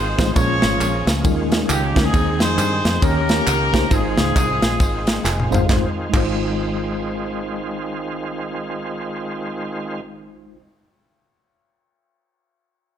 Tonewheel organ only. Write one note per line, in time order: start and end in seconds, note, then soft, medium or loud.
0.00 0.34 D#3 medium
0.00 0.34 G#3 medium
0.00 0.35 C4 medium
0.00 0.34 F4 medium
0.36 1.24 F3 medium
0.36 1.24 A#3 medium
0.36 2.12 C#4 medium
0.36 1.24 G#4 medium
1.25 5.65 D#3 medium
1.25 3.01 G#3 medium
1.25 2.13 F4 medium
2.13 3.02 C4 medium
2.13 3.01 G#4 medium
3.02 3.91 A#3 medium
3.02 3.90 C#4 medium
3.02 3.91 G4 medium
3.90 5.67 G#3 medium
3.90 5.67 C4 medium
3.90 5.67 F4 medium
5.69 10.01 D#3 medium
5.69 10.01 G#3 medium
5.69 10.01 C4 medium
5.69 10.01 F4 medium